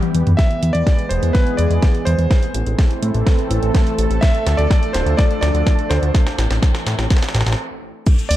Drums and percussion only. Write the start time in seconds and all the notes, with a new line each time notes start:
0.03 closed hi-hat, high tom
0.15 closed hi-hat
0.27 closed hi-hat, mid tom
0.39 kick, snare, closed hi-hat
0.51 closed hi-hat
0.63 closed hi-hat
0.75 closed hi-hat
0.87 kick, snare, closed hi-hat
0.99 closed hi-hat
1.11 closed hi-hat
1.23 closed hi-hat
1.35 kick, snare, closed hi-hat
1.47 closed hi-hat
1.59 closed hi-hat
1.71 closed hi-hat
1.82 kick, snare, closed hi-hat
1.95 closed hi-hat
2.07 closed hi-hat
2.19 closed hi-hat
2.31 kick, snare, closed hi-hat
2.42 closed hi-hat
2.54 closed hi-hat
2.67 closed hi-hat
2.79 kick, snare, closed hi-hat
2.91 closed hi-hat
3.03 closed hi-hat
3.15 closed hi-hat
3.27 kick, snare, closed hi-hat
3.39 closed hi-hat
3.51 closed hi-hat
3.63 closed hi-hat
3.75 kick, snare, closed hi-hat
3.87 closed hi-hat
3.99 closed hi-hat
4.11 closed hi-hat
4.22 kick, snare, closed hi-hat
4.35 closed hi-hat
4.47 snare, closed hi-hat
4.59 closed hi-hat
4.70 kick, snare, closed hi-hat
4.83 closed hi-hat
4.94 snare, closed hi-hat
5.07 closed hi-hat
5.18 kick, snare, closed hi-hat
5.31 closed hi-hat
5.43 snare, closed hi-hat
5.55 closed hi-hat
5.66 kick, snare, closed hi-hat
5.79 closed hi-hat
5.91 snare, closed hi-hat
6.03 closed hi-hat
6.14 kick, snare, closed hi-hat
6.27 snare, closed hi-hat
6.39 snare, closed hi-hat
6.51 snare, closed hi-hat
6.62 kick, snare, closed hi-hat
6.75 snare, closed hi-hat
6.87 snare, closed hi-hat
6.99 snare, closed hi-hat
7.10 kick, snare, closed hi-hat
7.17 snare
7.23 snare, closed hi-hat
7.29 snare
7.35 snare, closed hi-hat
7.41 snare
7.47 snare, closed hi-hat
7.52 snare
8.06 kick, closed hi-hat, crash, cabasa
8.19 closed hi-hat, cabasa
8.31 open hi-hat